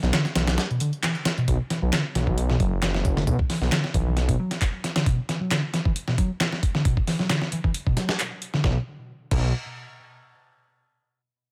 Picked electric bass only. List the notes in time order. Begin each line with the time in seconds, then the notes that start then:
0.03 F#3
0.13 D3
0.36 E3
0.48 E3
0.70 B2
0.81 D3
1.03 E3
1.38 B2
1.48 B2
1.70 E3
1.82 F#3
1.93 D3
2.15 E3
2.27 E3
2.50 B2
2.60 F#3
3.17 D3
3.27 B2
3.50 E3
3.62 F#3
3.72 D3
3.95 E3
4.07 E3
4.29 B2
4.39 F#3
4.96 D3
5.07 B2
5.29 E3
5.41 F#3
5.51 D3
5.74 E3
5.86 E3
6.08 B2
6.18 F#3
6.75 D3
6.86 B2
7.08 E3
7.20 F#3
7.30 D3
7.53 E3
7.64 E3
7.87 B2
7.97 F#3
8.54 D3
8.64 B2
9.32 B2